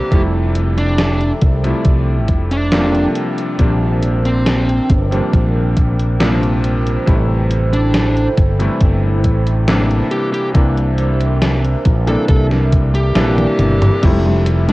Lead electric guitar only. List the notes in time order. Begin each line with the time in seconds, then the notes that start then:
Already playing: G4
0.78 D4
2.52 D4
4.25 C4
7.73 D4
10.11 G4
10.33 G4
12.08 A4
12.29 A4
12.95 G4
14.69 D4